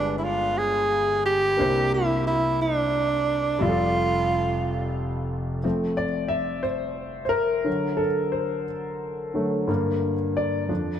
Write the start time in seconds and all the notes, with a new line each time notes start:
Already playing: G1 G2 G3 G#3 D4 F4 B4
0.18 E4
0.24 F4
0.58 G#4
1.26 G4
1.57 C2 C3 A#3 D4 E4 C5
1.94 E4
2.27 E4
2.62 D4
3.59 F1 F2 G3 F4 G4 E5
3.69 A4
5.63 F3 A3 C4
5.97 D5
6.28 E5
6.63 C5
7.25 C5
7.29 A#4
7.64 D3 F#3
7.97 A4
8.32 C5
9.34 D3 F#3 A3
9.67 G2 D3 A#3
10.37 D5
10.68 F2 F3 D4